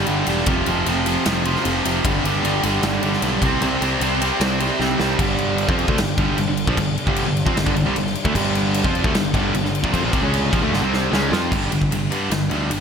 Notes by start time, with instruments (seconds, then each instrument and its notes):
Already playing: tonewheel organ G3 D4 A4
0.06 picked electric bass G1, distorted electric guitar G2 D3 G3, ride
0.27 picked electric bass E1, distorted electric guitar G2 D3 G3, ride
0.46 picked electric bass F1, distorted electric guitar F2 C3 F3, tonewheel organ F3 C4 G4, kick, ride
0.66 picked electric bass F1, distorted electric guitar F2 C3 F3, ride
0.86 picked electric bass F1, distorted electric guitar F2 C3 F3, ride
1.06 distorted electric guitar F2 C3 F3, ride
1.25 picked electric bass F1, distorted electric guitar F2 C3 F3, snare, ride
1.45 distorted electric guitar F2 C3 F3, ride
1.56 snare
1.63 picked electric bass F1, distorted electric guitar F2 C3 F3, ride
1.84 picked electric bass F1, distorted electric guitar F2 C3 F3, ride
2.04 picked electric bass G1, distorted electric guitar G2 D3 G3, tonewheel organ G3 D4 A4, kick, ride
2.24 picked electric bass G1, distorted electric guitar G2 D3 G3, ride
2.44 picked electric bass G1, distorted electric guitar G2 D3 G3, ride
2.63 picked electric bass G1, distorted electric guitar G2 D3 G3, ride
2.81 picked electric bass G1, distorted electric guitar G2 D3 G3, snare, ride
3.01 picked electric bass G1, distorted electric guitar G2 D3 G3, ride
3.13 snare
3.22 picked electric bass B1, distorted electric guitar G2 D3 G3, ride
3.42 picked electric bass C2, distorted electric guitar C3 G3 C4, tonewheel organ C4 G4 D5, kick, ride
3.61 picked electric bass C2, distorted electric guitar C3 G3 C4, ride
3.81 picked electric bass C2, distorted electric guitar C3 G3 C4, ride
4.01 picked electric bass C2, distorted electric guitar C3 G3 C4, ride
4.20 distorted electric guitar C3 G3 C4, ride
4.40 picked electric bass C2, distorted electric guitar C3 G3 C4, snare, ride
4.60 distorted electric guitar C3 G3 C4, ride
4.80 picked electric bass C2, distorted electric guitar C3 G3 C4, snare
4.98 picked electric bass C2, distorted electric guitar C3 G3 C4, snare
5.19 picked electric bass G1, distorted electric guitar G2 D3 G3, tonewheel organ G3 D4 A4, kick, crash
5.38 crash
5.58 crash
5.68 picked electric bass F2, distorted electric guitar F3 C4 F4, kick
5.79 crash
5.88 picked electric bass D2, distorted electric guitar D3 A3, kick
5.98 picked electric bass G1, distorted electric guitar G2 D3, snare, crash
6.17 picked electric bass G1, distorted electric guitar G2 D3 G3, kick, crash
6.38 picked electric bass G1, distorted electric guitar G2 D3, crash
6.48 picked electric bass G1, distorted electric guitar G2 D3
6.57 crash
6.67 picked electric bass A#1, distorted electric guitar A#2 F3, kick
6.77 picked electric bass G1, distorted electric guitar G2 D3, kick, crash
6.98 crash
7.07 picked electric bass G1, distorted electric guitar G2 D3 G3, kick
7.16 crash
7.27 picked electric bass G1, distorted electric guitar G2 D3
7.37 crash
7.46 picked electric bass F2, distorted electric guitar F3 C4, kick
7.56 picked electric bass G1, distorted electric guitar G2 D3, snare, crash
7.66 picked electric bass G1, distorted electric guitar G2 D3, kick
7.76 picked electric bass G1, distorted electric guitar G2 D3, crash
7.86 picked electric bass C2, distorted electric guitar C3 G3
7.96 picked electric bass G1, distorted electric guitar G2 D3, crash
8.07 snare
8.15 crash
8.25 picked electric bass D2, distorted electric guitar D3 A3, kick
8.34 picked electric bass G1, distorted electric guitar G2 D3 G3, kick, crash
8.55 crash
8.74 crash
8.84 picked electric bass F2, distorted electric guitar F3 C4 F4, kick
8.95 crash
9.04 picked electric bass D2, distorted electric guitar D3 A3, kick
9.15 picked electric bass G1, distorted electric guitar G2 D3, snare, crash
9.34 picked electric bass G1, distorted electric guitar G2 D3 G3, kick, crash
9.53 picked electric bass G1, distorted electric guitar G2 D3, crash
9.64 picked electric bass G1, distorted electric guitar G2 D3, snare
9.75 crash
9.83 picked electric bass A#1, distorted electric guitar A#2 F3, kick
9.93 picked electric bass F2, distorted electric guitar F3 C4, kick, crash
10.03 picked electric bass A#1, distorted electric guitar A#2 F3
10.13 picked electric bass C2, distorted electric guitar C3 G3, kick, crash
10.22 picked electric bass C#2, distorted electric guitar C#3 G#3 C#4
10.34 crash
10.53 picked electric bass A#1, distorted electric guitar A#2 F3, kick, crash
10.62 picked electric bass D2, distorted electric guitar D3 A3
10.72 picked electric bass G1, distorted electric guitar G2 D3, snare
10.82 picked electric bass C2, distorted electric guitar C3 G3 C4
10.93 snare
11.11 picked electric bass C#2, distorted electric guitar C#3 G#3 C#4, snare
11.31 picked electric bass F2, distorted electric guitar F3 C4 F4, snare
11.51 picked electric bass G1, distorted electric guitar G2 D3 G3, kick, crash
11.71 picked electric bass G1, distorted electric guitar G2 D3, ride
11.81 kick
11.91 picked electric bass G1, distorted electric guitar G2 D3, ride
12.10 distorted electric guitar G2 D3 G3, picked electric bass G2, ride
12.30 picked electric bass G1, distorted electric guitar G2 D3, snare, ride
12.49 picked electric bass D2, distorted electric guitar G2 D3 G3, ride
12.70 picked electric bass G1, distorted electric guitar G2 D3, ride